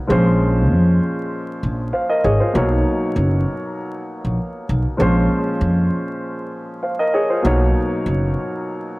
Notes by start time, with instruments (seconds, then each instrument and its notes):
0.07 upright bass A#1, grand piano A#2 F3 G#3 C#4
0.12 grand piano C5
0.71 upright bass F2
1.63 upright bass A#1
1.93 grand piano C5 F5
2.09 grand piano A#4 D#5
2.24 upright bass G#1, grand piano G#4 C#5
2.40 grand piano F4 C5
2.53 upright bass B1, grand piano B2 F#3 A#3 D#4
2.57 grand piano C#5
3.16 upright bass F#1
4.25 upright bass A#1
4.69 upright bass B1
4.97 upright bass A#1, grand piano A#2 F3 G#3 C#4
5.01 grand piano C5
5.61 upright bass F2
6.83 grand piano C5 F5
6.99 grand piano A#4 D#5
7.14 grand piano G#4 C#5
7.30 grand piano F4 C5
7.42 upright bass B1, grand piano B2 F#3 A#3 D#4
7.47 grand piano C#5
8.06 upright bass F#1